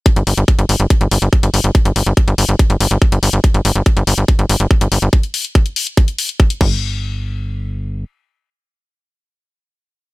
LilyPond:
<<
  \new Staff \with { instrumentName = "Analog synth bass" } { \clef bass \time 4/4 \key c \minor \tempo 4 = 142 r16 g,,16 g,,16 g,,16 r16 g,,16 g,,16 g,,16 r16 g,,16 g,,16 g,,16 r16 g,,16 g,,16 g,,16 | r16 g,,16 g,,16 g,,16 r16 g,,16 g,,16 g,,16 r16 g,,16 g,,16 g,,16 r16 g,,16 g,,16 g,,16 | r16 g,,16 g,,16 g,,16 r16 g,,16 g,,16 g,,16 r16 g,,16 g,,16 g,,16 r16 g,,16 g,,16 g,,16 | r2. r8 g,,8~ |
g,,2. r4 | r1 | }
  \new DrumStaff \with { instrumentName = "Drums" } \drummode { \time 4/4 <hh bd>16 hh16 hho16 hh16 <hh bd>16 hh16 hho16 hh16 <hh bd>16 hh16 hho16 hh16 <hh bd>16 hh16 hho16 hh16 | <hh bd>16 hh16 hho16 hh16 <hh bd>16 hh16 hho16 hh16 <hh bd>16 hh16 hho16 hh16 <hh bd>16 hh16 hho16 hh16 | <hh bd>16 hh16 hho16 hh16 <hh bd>16 hh16 hho16 hh16 <hh bd>16 hh16 hho16 hh16 <hh bd>16 hh16 hho16 hh16 | <hh bd>16 hh16 hho16 hh16 <hh bd>16 hh16 hho16 hh16 <hh bd>16 hh16 hho16 hh16 <hh bd>16 hh16 <cymc bd>8 |
r4 r4 r4 r4 | r4 r4 r4 r4 | }
>>